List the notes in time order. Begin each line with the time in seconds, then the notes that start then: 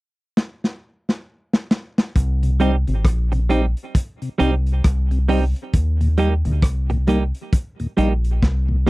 0.37 snare
0.64 snare
1.09 snare
1.53 snare
1.71 snare
1.98 snare
2.16 C2, kick, closed hi-hat
2.43 C3, closed hi-hat
2.60 G3 C4 D#4 G4, closed hi-hat
2.87 G#1 C3, closed hi-hat
3.05 A#1, kick, cross-stick, closed hi-hat
3.32 C3, muted clean electric guitar stroke, closed hi-hat
3.49 G3 C4 D#4 G4, closed hi-hat
3.77 closed hi-hat
3.95 kick, closed hi-hat
4.22 C3, closed hi-hat
4.38 C2 G3 C4 D#4 G4, closed hi-hat
4.67 closed hi-hat
4.84 C2, kick, cross-stick, closed hi-hat
5.11 C3, closed hi-hat
5.29 G3 C4 D#4 G4, open hi-hat
5.56 closed hi-hat
5.73 D#2, kick, closed hi-hat
6.01 D#2 A#2, closed hi-hat
6.17 G3 A#3 D#4 G4, closed hi-hat
6.45 D2 D#2 A#2, closed hi-hat
6.62 C2, kick, cross-stick, closed hi-hat
6.90 D#2 A#2, muted clean electric guitar stroke, closed hi-hat
7.07 G3 A#3 D#4 G4, closed hi-hat
7.34 closed hi-hat
7.53 kick, closed hi-hat
7.80 D#2 A#2, closed hi-hat
7.97 A#1 G3 A#3 D#4 G4, closed hi-hat
8.24 closed hi-hat
8.43 C2, kick, snare
8.69 D#2 A#2
8.86 G3